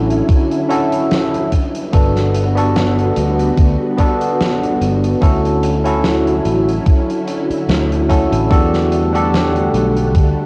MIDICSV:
0, 0, Header, 1, 6, 480
1, 0, Start_track
1, 0, Key_signature, 2, "major"
1, 0, Tempo, 821918
1, 1131, Time_signature, 4, 2, 24, 8
1, 6107, End_track
2, 0, Start_track
2, 0, Title_t, "Tine electric piano"
2, 0, Program_c, 0, 4
2, 0, Control_c, 0, 64, 127
2, 0, Note_on_c, 0, 61, 82
2, 0, Note_on_c, 0, 64, 77
2, 0, Note_on_c, 0, 66, 75
2, 0, Note_on_c, 0, 69, 91
2, 379, Note_off_c, 0, 61, 0
2, 381, Note_off_c, 0, 64, 0
2, 384, Note_off_c, 0, 66, 0
2, 388, Note_off_c, 0, 69, 0
2, 402, Note_on_c, 0, 61, 91
2, 406, Note_on_c, 0, 64, 83
2, 408, Note_on_c, 0, 66, 82
2, 411, Note_on_c, 0, 69, 102
2, 873, Note_off_c, 0, 61, 0
2, 875, Note_off_c, 0, 64, 0
2, 876, Note_off_c, 0, 66, 0
2, 878, Note_off_c, 0, 69, 0
2, 899, Control_c, 0, 64, 0
2, 994, Control_c, 0, 64, 127
2, 1124, Note_on_c, 0, 59, 86
2, 1128, Note_on_c, 0, 62, 79
2, 1132, Note_on_c, 0, 66, 74
2, 1133, Note_on_c, 0, 69, 96
2, 1467, Note_off_c, 0, 59, 0
2, 1469, Note_off_c, 0, 62, 0
2, 1471, Note_off_c, 0, 66, 0
2, 1472, Note_off_c, 0, 69, 0
2, 1489, Note_on_c, 0, 59, 85
2, 1495, Note_on_c, 0, 62, 75
2, 1500, Note_on_c, 0, 66, 77
2, 1507, Note_on_c, 0, 69, 95
2, 2298, Note_off_c, 0, 59, 0
2, 2301, Note_off_c, 0, 62, 0
2, 2304, Note_off_c, 0, 66, 0
2, 2307, Note_off_c, 0, 69, 0
2, 2321, Note_on_c, 0, 59, 95
2, 2327, Note_on_c, 0, 62, 82
2, 2332, Note_on_c, 0, 66, 83
2, 2338, Note_on_c, 0, 69, 103
2, 3020, Note_off_c, 0, 59, 0
2, 3023, Note_off_c, 0, 62, 0
2, 3025, Note_off_c, 0, 66, 0
2, 3028, Note_off_c, 0, 69, 0
2, 3044, Note_on_c, 0, 61, 84
2, 3046, Note_on_c, 0, 64, 74
2, 3050, Note_on_c, 0, 66, 77
2, 3052, Note_on_c, 0, 69, 91
2, 3059, Control_c, 0, 64, 0
2, 3161, Control_c, 0, 64, 127
2, 3387, Note_off_c, 0, 61, 0
2, 3388, Note_off_c, 0, 64, 0
2, 3390, Note_off_c, 0, 66, 0
2, 3391, Note_off_c, 0, 69, 0
2, 3411, Note_on_c, 0, 61, 82
2, 3417, Note_on_c, 0, 64, 74
2, 3421, Note_on_c, 0, 66, 79
2, 3429, Note_on_c, 0, 69, 90
2, 4219, Note_off_c, 0, 61, 0
2, 4222, Note_off_c, 0, 64, 0
2, 4224, Note_off_c, 0, 66, 0
2, 4228, Note_off_c, 0, 69, 0
2, 4723, Note_on_c, 0, 61, 88
2, 4726, Note_on_c, 0, 64, 79
2, 4727, Note_on_c, 0, 66, 78
2, 4732, Note_on_c, 0, 69, 99
2, 4941, Note_off_c, 0, 61, 0
2, 4942, Note_off_c, 0, 64, 0
2, 4943, Note_off_c, 0, 66, 0
2, 4945, Note_off_c, 0, 69, 0
2, 4963, Note_on_c, 0, 62, 82
2, 4966, Note_on_c, 0, 66, 75
2, 4969, Note_on_c, 0, 67, 79
2, 4972, Note_on_c, 0, 69, 91
2, 4977, Control_c, 0, 64, 0
2, 5072, Control_c, 0, 64, 127
2, 5307, Note_off_c, 0, 62, 0
2, 5308, Note_off_c, 0, 66, 0
2, 5310, Note_off_c, 0, 67, 0
2, 5311, Note_off_c, 0, 69, 0
2, 5330, Note_on_c, 0, 62, 84
2, 5338, Note_on_c, 0, 66, 76
2, 5343, Note_on_c, 0, 67, 78
2, 5349, Note_on_c, 0, 69, 91
2, 6107, Note_off_c, 0, 62, 0
2, 6107, Note_off_c, 0, 66, 0
2, 6107, Note_off_c, 0, 67, 0
2, 6107, Note_off_c, 0, 69, 0
2, 6107, End_track
3, 0, Start_track
3, 0, Title_t, "String machine"
3, 0, Program_c, 1, 50
3, 0, Note_on_c, 1, 50, 75
3, 0, Note_on_c, 1, 54, 68
3, 0, Note_on_c, 1, 61, 69
3, 0, Note_on_c, 1, 64, 87
3, 872, Note_off_c, 1, 54, 0
3, 872, Note_off_c, 1, 61, 0
3, 873, Note_off_c, 1, 50, 0
3, 873, Note_off_c, 1, 64, 0
3, 889, Note_on_c, 1, 50, 76
3, 889, Note_on_c, 1, 66, 87
3, 890, Note_on_c, 1, 55, 69
3, 890, Note_on_c, 1, 59, 75
3, 3028, Note_off_c, 1, 50, 0
3, 3028, Note_off_c, 1, 66, 0
3, 3029, Note_off_c, 1, 55, 0
3, 3029, Note_off_c, 1, 59, 0
3, 3047, Note_on_c, 1, 64, 85
3, 3048, Note_on_c, 1, 54, 73
3, 3049, Note_on_c, 1, 50, 81
3, 3050, Note_on_c, 1, 61, 75
3, 4950, Note_off_c, 1, 54, 0
3, 4950, Note_off_c, 1, 64, 0
3, 4951, Note_off_c, 1, 61, 0
3, 4967, Note_on_c, 1, 57, 74
3, 4970, Note_on_c, 1, 55, 70
3, 4971, Note_on_c, 1, 78, 87
3, 6107, Note_off_c, 1, 50, 0
3, 6107, Note_off_c, 1, 55, 0
3, 6107, Note_off_c, 1, 57, 0
3, 6107, Note_off_c, 1, 78, 0
3, 6107, End_track
4, 0, Start_track
4, 0, Title_t, "Fretless electric bass"
4, 0, Program_c, 2, 35
4, 0, Note_on_c, 2, 33, 75
4, 122, Note_off_c, 2, 33, 0
4, 1128, Note_on_c, 2, 31, 95
4, 1811, Note_off_c, 2, 31, 0
4, 1850, Note_on_c, 2, 38, 76
4, 2042, Note_off_c, 2, 38, 0
4, 2089, Note_on_c, 2, 38, 88
4, 2192, Note_off_c, 2, 38, 0
4, 2810, Note_on_c, 2, 31, 83
4, 3002, Note_off_c, 2, 31, 0
4, 3048, Note_on_c, 2, 38, 92
4, 3731, Note_off_c, 2, 38, 0
4, 3769, Note_on_c, 2, 33, 73
4, 3961, Note_off_c, 2, 33, 0
4, 4488, Note_on_c, 2, 38, 79
4, 4814, Note_off_c, 2, 38, 0
4, 4859, Note_on_c, 2, 33, 89
4, 4945, Note_off_c, 2, 33, 0
4, 4967, Note_on_c, 2, 40, 93
4, 5650, Note_off_c, 2, 40, 0
4, 5685, Note_on_c, 2, 35, 76
4, 5928, Note_off_c, 2, 35, 0
4, 5928, Note_on_c, 2, 38, 88
4, 6031, Note_off_c, 2, 38, 0
4, 6107, End_track
5, 0, Start_track
5, 0, Title_t, "Muted fretless electric bass strokes"
5, 4380, Note_on_c, 9, 29, 40
5, 4439, Note_off_c, 9, 29, 0
5, 6107, End_track
6, 0, Start_track
6, 0, Title_t, "Drums"
6, 61, Note_on_c, 9, 42, 55
6, 119, Note_off_c, 9, 42, 0
6, 169, Note_on_c, 9, 36, 116
6, 174, Note_on_c, 9, 42, 80
6, 227, Note_off_c, 9, 36, 0
6, 232, Note_off_c, 9, 42, 0
6, 300, Note_on_c, 9, 42, 49
6, 358, Note_off_c, 9, 42, 0
6, 411, Note_on_c, 9, 42, 88
6, 470, Note_off_c, 9, 42, 0
6, 539, Note_on_c, 9, 42, 69
6, 597, Note_off_c, 9, 42, 0
6, 649, Note_on_c, 9, 42, 86
6, 651, Note_on_c, 9, 38, 105
6, 707, Note_off_c, 9, 42, 0
6, 710, Note_off_c, 9, 38, 0
6, 784, Note_on_c, 9, 42, 58
6, 842, Note_off_c, 9, 42, 0
6, 888, Note_on_c, 9, 36, 58
6, 888, Note_on_c, 9, 42, 90
6, 946, Note_off_c, 9, 42, 0
6, 947, Note_off_c, 9, 36, 0
6, 1021, Note_on_c, 9, 42, 66
6, 1079, Note_off_c, 9, 42, 0
6, 1127, Note_on_c, 9, 42, 90
6, 1128, Note_on_c, 9, 36, 123
6, 1185, Note_off_c, 9, 42, 0
6, 1187, Note_off_c, 9, 36, 0
6, 1260, Note_on_c, 9, 38, 33
6, 1266, Note_on_c, 9, 42, 47
6, 1318, Note_off_c, 9, 38, 0
6, 1324, Note_off_c, 9, 42, 0
6, 1369, Note_on_c, 9, 42, 86
6, 1427, Note_off_c, 9, 42, 0
6, 1503, Note_on_c, 9, 42, 63
6, 1561, Note_off_c, 9, 42, 0
6, 1612, Note_on_c, 9, 42, 88
6, 1614, Note_on_c, 9, 38, 121
6, 1670, Note_off_c, 9, 42, 0
6, 1673, Note_off_c, 9, 38, 0
6, 1745, Note_on_c, 9, 42, 54
6, 1803, Note_off_c, 9, 42, 0
6, 1848, Note_on_c, 9, 42, 88
6, 1906, Note_off_c, 9, 42, 0
6, 1983, Note_on_c, 9, 42, 60
6, 2041, Note_off_c, 9, 42, 0
6, 2088, Note_on_c, 9, 36, 120
6, 2089, Note_on_c, 9, 42, 79
6, 2147, Note_off_c, 9, 36, 0
6, 2147, Note_off_c, 9, 42, 0
6, 2327, Note_on_c, 9, 42, 84
6, 2328, Note_on_c, 9, 36, 62
6, 2386, Note_off_c, 9, 42, 0
6, 2387, Note_off_c, 9, 36, 0
6, 2460, Note_on_c, 9, 42, 63
6, 2518, Note_off_c, 9, 42, 0
6, 2574, Note_on_c, 9, 38, 112
6, 2575, Note_on_c, 9, 42, 79
6, 2632, Note_off_c, 9, 38, 0
6, 2633, Note_off_c, 9, 42, 0
6, 2706, Note_on_c, 9, 42, 56
6, 2764, Note_off_c, 9, 42, 0
6, 2813, Note_on_c, 9, 42, 80
6, 2871, Note_off_c, 9, 42, 0
6, 2943, Note_on_c, 9, 42, 66
6, 3001, Note_off_c, 9, 42, 0
6, 3048, Note_on_c, 9, 36, 122
6, 3055, Note_on_c, 9, 42, 87
6, 3106, Note_off_c, 9, 36, 0
6, 3114, Note_off_c, 9, 42, 0
6, 3185, Note_on_c, 9, 42, 51
6, 3243, Note_off_c, 9, 42, 0
6, 3289, Note_on_c, 9, 42, 83
6, 3347, Note_off_c, 9, 42, 0
6, 3419, Note_on_c, 9, 42, 63
6, 3478, Note_off_c, 9, 42, 0
6, 3528, Note_on_c, 9, 38, 113
6, 3534, Note_on_c, 9, 42, 83
6, 3586, Note_off_c, 9, 38, 0
6, 3593, Note_off_c, 9, 42, 0
6, 3662, Note_on_c, 9, 42, 55
6, 3720, Note_off_c, 9, 42, 0
6, 3767, Note_on_c, 9, 42, 73
6, 3826, Note_off_c, 9, 42, 0
6, 3905, Note_on_c, 9, 42, 57
6, 3963, Note_off_c, 9, 42, 0
6, 4007, Note_on_c, 9, 42, 75
6, 4008, Note_on_c, 9, 36, 121
6, 4065, Note_off_c, 9, 42, 0
6, 4067, Note_off_c, 9, 36, 0
6, 4145, Note_on_c, 9, 42, 49
6, 4203, Note_off_c, 9, 42, 0
6, 4248, Note_on_c, 9, 42, 86
6, 4307, Note_off_c, 9, 42, 0
6, 4383, Note_on_c, 9, 42, 60
6, 4441, Note_off_c, 9, 42, 0
6, 4490, Note_on_c, 9, 42, 76
6, 4493, Note_on_c, 9, 38, 109
6, 4549, Note_off_c, 9, 42, 0
6, 4552, Note_off_c, 9, 38, 0
6, 4624, Note_on_c, 9, 42, 52
6, 4682, Note_off_c, 9, 42, 0
6, 4728, Note_on_c, 9, 36, 58
6, 4732, Note_on_c, 9, 42, 82
6, 4786, Note_off_c, 9, 36, 0
6, 4791, Note_off_c, 9, 42, 0
6, 4861, Note_on_c, 9, 42, 70
6, 4919, Note_off_c, 9, 42, 0
6, 4968, Note_on_c, 9, 36, 119
6, 4976, Note_on_c, 9, 42, 84
6, 5026, Note_off_c, 9, 36, 0
6, 5034, Note_off_c, 9, 42, 0
6, 5102, Note_on_c, 9, 38, 34
6, 5104, Note_on_c, 9, 42, 45
6, 5161, Note_off_c, 9, 38, 0
6, 5162, Note_off_c, 9, 42, 0
6, 5208, Note_on_c, 9, 42, 76
6, 5267, Note_off_c, 9, 42, 0
6, 5344, Note_on_c, 9, 42, 66
6, 5402, Note_off_c, 9, 42, 0
6, 5454, Note_on_c, 9, 42, 73
6, 5456, Note_on_c, 9, 38, 106
6, 5512, Note_off_c, 9, 42, 0
6, 5514, Note_off_c, 9, 38, 0
6, 5582, Note_on_c, 9, 42, 47
6, 5640, Note_off_c, 9, 42, 0
6, 5690, Note_on_c, 9, 42, 75
6, 5748, Note_off_c, 9, 42, 0
6, 5820, Note_on_c, 9, 42, 55
6, 5879, Note_off_c, 9, 42, 0
6, 5927, Note_on_c, 9, 36, 112
6, 5927, Note_on_c, 9, 42, 84
6, 5985, Note_off_c, 9, 36, 0
6, 5985, Note_off_c, 9, 42, 0
6, 6107, End_track
0, 0, End_of_file